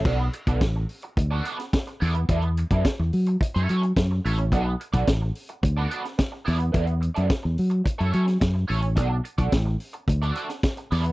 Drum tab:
CC |x---------------|----------------|----------------|----------------|
HH |--xxx-oxx-xxxxox|xxxxx-oxxxxxx-ox|x-xxx-oxx-xxx-ox|xxxxx-oxxxxxx-ox|
SD |----o------oo---|----o-------o---|----o------oo---|----o------oo---|
BD |o--oo---o---o---|o--oo---o---o---|o--oo---o---o---|o---o---o---o---|

CC |----------------|
HH |x-xxx-oxxxxxxxox|
SD |----o------oo---|
BD |o--oo---o---o---|